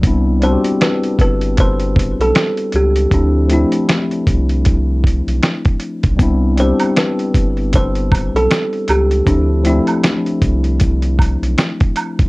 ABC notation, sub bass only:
X:1
M:4/4
L:1/16
Q:"Swing 16ths" 1/4=78
K:C
V:1 name="Sub bass" clef=bass
C,,3 z3 G,,,4- G,,, B,,, z2 _D,,2 | D,,3 z3 C,,4- C,, B,,, z3 B,,, | C,,3 z3 G,,,4- G,,, B,,, z2 _D,,2 | D,,3 z3 C,,4- C,, B,,, z3 B,,, |]